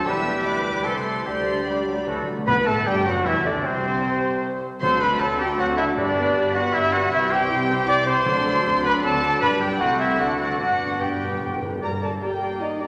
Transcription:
0.06 E1 E2 E3 G3 E4 G4 B4 E5 E6
0.45 D2 D5 D6
0.84 C2 E3 A3 E4 A4 C5 C6
1.25 D2 D3 G3 D4 G4 C5 D5 C6
1.66 G3 G4 B4 B5
1.86 F#3
2.07 D2 D3 E3 F#3 A3 F#4 A4
2.15 D3
2.22 D3
2.27 D3
2.38 D3
2.46 B1 G2 B2 B3 B4 B5
2.64 A1 A2 A3 A4 A5
2.85 G1 G2 G3 G4 G5
3.06 F#1 F#2 F#3 F#4 F#5
3.25 E1 E2 E3 E4 E5
3.44 D2 D3 D4 D5
3.64 C2 C3 C4 C5
4.81 D2 D3 F#3 A3 C4 F#4 A4 C5 C6
5.01 D4 A4 B4 B5
5.20 D2 D3 F#3 C4 F#4 A4 A5
5.39 D4 G4 A4 G5
5.58 D2 D3 F#3 C4 F#4 A4 F#5
5.77 D4 E4 A4 E5
5.96 G1 G2 G3 B3 D4 G4 B4 D5
6.18 B3 B4
6.36 G1 G2 D4 G4
6.54 B3 F#4 B4 F#5
6.73 G1 G2 D4 E4 G4 E5
6.93 B3 F#4 B4 F#5
7.11 C2 C3 E3 G3 C4 E4 G4 C5 E5
7.31 E4 G4 C5 G5
7.50 C2 C3 C4 G4
7.70 E4 C5
7.88 C2 C3 C4 G4 D5 D6
8.07 E4 C5 C6
8.26 D2 D3 F#3 C4 D4 F#4 D5
8.46 D4 A4
8.65 D2 D3 C4 F#4
8.83 D4 A4 B4 B5
9.02 D2 D3 F#3 C4 F#4 A4 D5 A5
9.23 D4 A4
9.40 G1 G2 G3 D4 G4 B4 D5 B5
9.61 G4 G5
9.79 C2 C3 A3 C4 E4 F#4 A4 C5 F#5
9.99 E4 E5
10.19 D2 D3 A3 D4 F#4 A4 D5 F#5
10.38 F#4 F#5
10.60 G1 G2 B3 D4 F#4 B4 D5 F#5
10.68 G2
10.76 G2
10.85 G2
10.92 G2
11.00 G2 B3 D4 G4 B4 D5 G5
11.08 G2
11.16 G2
11.24 G2
11.32 G2
11.39 G2
11.46 G2
11.55 G2
11.62 G2
11.69 G2
11.81 G1 G2 G3 A#3 A#4 D5 A#5
12.02 G3 A4 D5 A5 A#5
12.21 G3 G4 D5 G5 A#5
12.41 G3 D5 A#5
12.60 G3 D#4 D5 D#5 A#5
12.79 G3 D4 D5 A#5

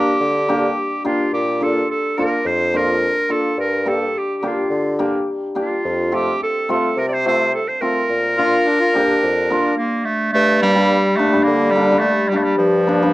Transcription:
Already playing: G4
0.20 D3
0.48 A#3 D4 G4
1.04 A#3 D4 F4 G4
1.33 A#2 G4
1.60 A#3 D4 F4 A4
1.90 A4
2.17 F2 A#3 D4 F4 A#4
2.45 F2 C5
2.73 A#3 D4 F4 A#4
3.29 A#3 D4 F4 A4
3.58 G2 A#4
3.86 A#3 D4 G4 A4
4.18 G4
4.37 G4
4.42 D3 A#3 D4 G4
4.48 F4
4.70 D3
4.99 A#3 D4 G4
5.55 A#3 D4 F4 G4
5.85 F2
6.12 A3 C4 F4 G4
6.43 A4
6.69 C3 A3 C4 F4 A4
6.97 C3 A#4
7.08 D5
7.13 C5
7.26 A3 C4 F4 C5
7.54 A4
7.68 C5
7.81 A3 C4 F4 A#4
8.10 A#2
8.37 A#3 D4 F4
8.66 D4
8.80 F4
8.92 F2 A#3 D4 G4
9.23 F2
9.50 A#3 D4 F4
9.77 A#3
10.05 A3
10.33 G2 A3
10.62 G3 A#3 D4
10.75 G3 A#3 D4
11.17 A3 A#3 D4
11.32 G3 A#3 D4
11.43 D3 A#3
11.71 G3
11.76 A#3 D4
11.90 G3 A#3 D4
11.99 A3
12.29 G3
12.33 A3 A#3 D4
12.43 G3
12.57 G2 F3
12.87 A#3 D4
13.02 G3 A#3 D4

